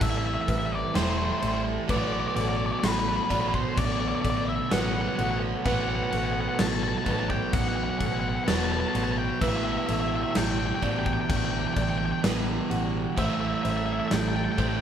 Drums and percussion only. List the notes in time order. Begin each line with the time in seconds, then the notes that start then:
0.01 kick, crash
0.48 kick, crash
0.95 snare, crash
1.42 crash
1.89 kick, crash
2.36 crash
2.84 snare, crash
3.30 kick, crash
3.54 kick
3.77 kick, crash
4.25 kick, crash
4.71 snare, crash
5.19 crash
5.66 kick, crash
6.12 crash
6.59 snare, crash
7.06 kick, crash
7.30 kick
7.53 kick, crash
8.00 kick, crash
8.48 snare, crash
8.95 crash
9.41 kick, crash
9.88 crash
10.35 snare, crash
10.83 kick, crash
11.06 kick
11.30 kick, crash
11.77 kick, crash
12.24 snare, crash
12.71 crash
13.18 kick, crash
13.65 crash
14.11 snare, crash
14.58 kick, crash